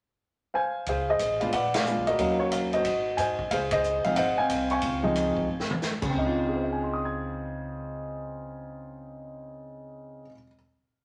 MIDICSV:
0, 0, Header, 1, 4, 480
1, 0, Start_track
1, 0, Key_signature, -5, "major"
1, 0, Tempo, 329489
1, 1260, Time_signature, 4, 2, 24, 8
1, 16090, End_track
2, 0, Start_track
2, 0, Title_t, "Grand piano"
2, 0, Program_c, 0, 0
2, 786, Note_on_c, 0, 77, 53
2, 793, Note_on_c, 0, 72, 58
2, 803, Note_on_c, 0, 80, 74
2, 1239, Note_off_c, 0, 80, 0
2, 1274, Note_off_c, 0, 77, 0
2, 1276, Note_off_c, 0, 72, 0
2, 1296, Note_on_c, 0, 77, 72
2, 1298, Note_on_c, 0, 72, 53
2, 1300, Note_on_c, 0, 68, 55
2, 1563, Note_off_c, 0, 77, 0
2, 1574, Note_off_c, 0, 72, 0
2, 1577, Note_off_c, 0, 68, 0
2, 1595, Note_on_c, 0, 72, 53
2, 1598, Note_on_c, 0, 68, 54
2, 1603, Note_on_c, 0, 75, 84
2, 2032, Note_off_c, 0, 75, 0
2, 2044, Note_on_c, 0, 77, 71
2, 2049, Note_on_c, 0, 56, 54
2, 2061, Note_on_c, 0, 59, 52
2, 2067, Note_on_c, 0, 62, 53
2, 2074, Note_on_c, 0, 65, 64
2, 2191, Note_off_c, 0, 72, 0
2, 2192, Note_off_c, 0, 68, 0
2, 2205, Note_off_c, 0, 56, 0
2, 2211, Note_off_c, 0, 59, 0
2, 2214, Note_off_c, 0, 62, 0
2, 2217, Note_off_c, 0, 65, 0
2, 2225, Note_off_c, 0, 77, 0
2, 2236, Note_on_c, 0, 78, 86
2, 2246, Note_on_c, 0, 71, 59
2, 2257, Note_on_c, 0, 74, 61
2, 2541, Note_off_c, 0, 74, 0
2, 2542, Note_off_c, 0, 78, 0
2, 2543, Note_on_c, 0, 77, 84
2, 2553, Note_on_c, 0, 68, 57
2, 2563, Note_on_c, 0, 74, 58
2, 2707, Note_on_c, 0, 56, 53
2, 2722, Note_on_c, 0, 59, 48
2, 2725, Note_on_c, 0, 62, 42
2, 2739, Note_on_c, 0, 65, 57
2, 2979, Note_off_c, 0, 56, 0
2, 2986, Note_off_c, 0, 59, 0
2, 2987, Note_off_c, 0, 62, 0
2, 2994, Note_off_c, 0, 65, 0
2, 3018, Note_on_c, 0, 75, 79
2, 3029, Note_off_c, 0, 77, 0
2, 3032, Note_on_c, 0, 66, 51
2, 3035, Note_on_c, 0, 70, 57
2, 3136, Note_off_c, 0, 71, 0
2, 3151, Note_off_c, 0, 68, 0
2, 3156, Note_off_c, 0, 74, 0
2, 3187, Note_on_c, 0, 54, 61
2, 3190, Note_on_c, 0, 58, 54
2, 3196, Note_on_c, 0, 61, 54
2, 3213, Note_on_c, 0, 77, 66
2, 3460, Note_off_c, 0, 75, 0
2, 3490, Note_on_c, 0, 73, 72
2, 3654, Note_off_c, 0, 77, 0
2, 3669, Note_off_c, 0, 73, 0
2, 3676, Note_on_c, 0, 77, 83
2, 3749, Note_off_c, 0, 77, 0
2, 3923, Note_off_c, 0, 66, 0
2, 3924, Note_off_c, 0, 70, 0
2, 3986, Note_on_c, 0, 75, 79
2, 4005, Note_on_c, 0, 72, 61
2, 4009, Note_on_c, 0, 66, 58
2, 4146, Note_off_c, 0, 54, 0
2, 4148, Note_off_c, 0, 58, 0
2, 4151, Note_off_c, 0, 61, 0
2, 4589, Note_off_c, 0, 75, 0
2, 4621, Note_on_c, 0, 80, 78
2, 4626, Note_off_c, 0, 72, 0
2, 4648, Note_on_c, 0, 72, 61
2, 4649, Note_on_c, 0, 75, 56
2, 4893, Note_off_c, 0, 66, 0
2, 5085, Note_off_c, 0, 72, 0
2, 5086, Note_off_c, 0, 75, 0
2, 5113, Note_on_c, 0, 77, 88
2, 5119, Note_off_c, 0, 80, 0
2, 5139, Note_on_c, 0, 68, 64
2, 5144, Note_on_c, 0, 72, 59
2, 5186, Note_off_c, 0, 77, 0
2, 5426, Note_on_c, 0, 75, 89
2, 5429, Note_off_c, 0, 68, 0
2, 5432, Note_off_c, 0, 72, 0
2, 5451, Note_on_c, 0, 68, 56
2, 5453, Note_on_c, 0, 72, 64
2, 5892, Note_on_c, 0, 77, 85
2, 5898, Note_on_c, 0, 53, 53
2, 5913, Note_on_c, 0, 56, 50
2, 5915, Note_off_c, 0, 75, 0
2, 5918, Note_on_c, 0, 60, 57
2, 5925, Note_on_c, 0, 63, 60
2, 6054, Note_off_c, 0, 53, 0
2, 6061, Note_on_c, 0, 78, 86
2, 6062, Note_off_c, 0, 56, 0
2, 6064, Note_off_c, 0, 60, 0
2, 6067, Note_off_c, 0, 63, 0
2, 6067, Note_off_c, 0, 72, 0
2, 6074, Note_off_c, 0, 77, 0
2, 6088, Note_on_c, 0, 72, 64
2, 6089, Note_on_c, 0, 75, 68
2, 6336, Note_off_c, 0, 68, 0
2, 6349, Note_off_c, 0, 78, 0
2, 6380, Note_on_c, 0, 80, 88
2, 6406, Note_on_c, 0, 60, 64
2, 6407, Note_on_c, 0, 77, 66
2, 6863, Note_on_c, 0, 85, 80
2, 6865, Note_off_c, 0, 80, 0
2, 6876, Note_off_c, 0, 77, 0
2, 6887, Note_on_c, 0, 80, 60
2, 6898, Note_on_c, 0, 77, 60
2, 6983, Note_off_c, 0, 72, 0
2, 6984, Note_off_c, 0, 75, 0
2, 7295, Note_off_c, 0, 60, 0
2, 7328, Note_on_c, 0, 56, 58
2, 7329, Note_on_c, 0, 53, 65
2, 7341, Note_on_c, 0, 60, 56
2, 7342, Note_on_c, 0, 63, 75
2, 7955, Note_off_c, 0, 53, 0
2, 7955, Note_off_c, 0, 56, 0
2, 7961, Note_off_c, 0, 60, 0
2, 7962, Note_off_c, 0, 63, 0
2, 8421, Note_off_c, 0, 85, 0
2, 8433, Note_off_c, 0, 80, 0
2, 8438, Note_off_c, 0, 77, 0
2, 8768, Note_on_c, 0, 49, 57
2, 8883, Note_on_c, 0, 60, 55
2, 9007, Note_on_c, 0, 63, 56
2, 9124, Note_on_c, 0, 65, 70
2, 9446, Note_on_c, 0, 68, 42
2, 9552, Note_on_c, 0, 72, 38
2, 9665, Note_on_c, 0, 75, 38
2, 9798, Note_on_c, 0, 80, 42
2, 9950, Note_on_c, 0, 84, 37
2, 10103, Note_on_c, 0, 87, 33
2, 10274, Note_on_c, 0, 92, 33
2, 14884, Note_off_c, 0, 49, 0
2, 14925, Note_off_c, 0, 68, 0
2, 14942, Note_off_c, 0, 60, 0
2, 14978, Note_off_c, 0, 72, 0
2, 15004, Note_off_c, 0, 63, 0
2, 15035, Note_off_c, 0, 75, 0
2, 15062, Note_off_c, 0, 65, 0
2, 15101, Note_off_c, 0, 80, 0
2, 15177, Note_off_c, 0, 84, 0
2, 15253, Note_off_c, 0, 87, 0
2, 15339, Note_off_c, 0, 92, 0
2, 16090, End_track
3, 0, Start_track
3, 0, Title_t, "Upright bass"
3, 0, Program_c, 1, 32
3, 1262, Note_on_c, 1, 37, 85
3, 1708, Note_off_c, 1, 37, 0
3, 1738, Note_on_c, 1, 33, 76
3, 2186, Note_off_c, 1, 33, 0
3, 2223, Note_on_c, 1, 34, 71
3, 2818, Note_off_c, 1, 34, 0
3, 2869, Note_on_c, 1, 35, 65
3, 3014, Note_off_c, 1, 35, 0
3, 3033, Note_on_c, 1, 38, 60
3, 3177, Note_off_c, 1, 38, 0
3, 3189, Note_on_c, 1, 39, 84
3, 4100, Note_off_c, 1, 39, 0
3, 4149, Note_on_c, 1, 32, 69
3, 4594, Note_off_c, 1, 32, 0
3, 4630, Note_on_c, 1, 44, 66
3, 5075, Note_off_c, 1, 44, 0
3, 5116, Note_on_c, 1, 37, 86
3, 5844, Note_off_c, 1, 37, 0
3, 6066, Note_on_c, 1, 32, 75
3, 6515, Note_off_c, 1, 32, 0
3, 6547, Note_on_c, 1, 36, 75
3, 6996, Note_off_c, 1, 36, 0
3, 7031, Note_on_c, 1, 37, 84
3, 7763, Note_off_c, 1, 37, 0
3, 7983, Note_on_c, 1, 32, 71
3, 8902, Note_off_c, 1, 32, 0
3, 8954, Note_on_c, 1, 37, 82
3, 14919, Note_off_c, 1, 37, 0
3, 16090, End_track
4, 0, Start_track
4, 0, Title_t, "Drums"
4, 1260, Note_on_c, 9, 51, 51
4, 1264, Note_on_c, 9, 36, 30
4, 1405, Note_off_c, 9, 51, 0
4, 1410, Note_off_c, 9, 36, 0
4, 1738, Note_on_c, 9, 44, 61
4, 1738, Note_on_c, 9, 51, 60
4, 1883, Note_off_c, 9, 44, 0
4, 1883, Note_off_c, 9, 51, 0
4, 2051, Note_on_c, 9, 51, 44
4, 2197, Note_off_c, 9, 51, 0
4, 2222, Note_on_c, 9, 51, 63
4, 2231, Note_on_c, 9, 36, 35
4, 2367, Note_off_c, 9, 51, 0
4, 2376, Note_off_c, 9, 36, 0
4, 2535, Note_on_c, 9, 51, 72
4, 2541, Note_on_c, 9, 38, 87
4, 2681, Note_off_c, 9, 51, 0
4, 2687, Note_off_c, 9, 38, 0
4, 2708, Note_on_c, 9, 44, 47
4, 2854, Note_off_c, 9, 44, 0
4, 3016, Note_on_c, 9, 51, 43
4, 3161, Note_off_c, 9, 51, 0
4, 3185, Note_on_c, 9, 51, 60
4, 3191, Note_on_c, 9, 36, 33
4, 3331, Note_off_c, 9, 51, 0
4, 3337, Note_off_c, 9, 36, 0
4, 3664, Note_on_c, 9, 44, 50
4, 3664, Note_on_c, 9, 51, 66
4, 3810, Note_off_c, 9, 44, 0
4, 3810, Note_off_c, 9, 51, 0
4, 3974, Note_on_c, 9, 51, 43
4, 4120, Note_off_c, 9, 51, 0
4, 4146, Note_on_c, 9, 51, 62
4, 4151, Note_on_c, 9, 36, 35
4, 4292, Note_off_c, 9, 51, 0
4, 4297, Note_off_c, 9, 36, 0
4, 4630, Note_on_c, 9, 44, 54
4, 4630, Note_on_c, 9, 51, 57
4, 4776, Note_off_c, 9, 44, 0
4, 4776, Note_off_c, 9, 51, 0
4, 4936, Note_on_c, 9, 36, 53
4, 5081, Note_off_c, 9, 36, 0
4, 5113, Note_on_c, 9, 36, 32
4, 5114, Note_on_c, 9, 51, 62
4, 5258, Note_off_c, 9, 36, 0
4, 5260, Note_off_c, 9, 51, 0
4, 5405, Note_on_c, 9, 51, 66
4, 5416, Note_on_c, 9, 36, 73
4, 5551, Note_off_c, 9, 51, 0
4, 5562, Note_off_c, 9, 36, 0
4, 5591, Note_on_c, 9, 44, 51
4, 5737, Note_off_c, 9, 44, 0
4, 5891, Note_on_c, 9, 51, 43
4, 6037, Note_off_c, 9, 51, 0
4, 6061, Note_on_c, 9, 51, 68
4, 6072, Note_on_c, 9, 36, 36
4, 6207, Note_off_c, 9, 51, 0
4, 6218, Note_off_c, 9, 36, 0
4, 6549, Note_on_c, 9, 44, 54
4, 6549, Note_on_c, 9, 51, 65
4, 6694, Note_off_c, 9, 44, 0
4, 6694, Note_off_c, 9, 51, 0
4, 6846, Note_on_c, 9, 51, 37
4, 6991, Note_off_c, 9, 51, 0
4, 7016, Note_on_c, 9, 51, 58
4, 7031, Note_on_c, 9, 36, 33
4, 7161, Note_off_c, 9, 51, 0
4, 7177, Note_off_c, 9, 36, 0
4, 7510, Note_on_c, 9, 44, 50
4, 7510, Note_on_c, 9, 51, 54
4, 7656, Note_off_c, 9, 44, 0
4, 7656, Note_off_c, 9, 51, 0
4, 7818, Note_on_c, 9, 36, 52
4, 7964, Note_off_c, 9, 36, 0
4, 8153, Note_on_c, 9, 38, 51
4, 8299, Note_off_c, 9, 38, 0
4, 8313, Note_on_c, 9, 47, 75
4, 8458, Note_off_c, 9, 47, 0
4, 8473, Note_on_c, 9, 44, 48
4, 8479, Note_on_c, 9, 38, 55
4, 8619, Note_off_c, 9, 44, 0
4, 8624, Note_off_c, 9, 38, 0
4, 8771, Note_on_c, 9, 49, 64
4, 8775, Note_on_c, 9, 36, 67
4, 8917, Note_off_c, 9, 49, 0
4, 8921, Note_off_c, 9, 36, 0
4, 16090, End_track
0, 0, End_of_file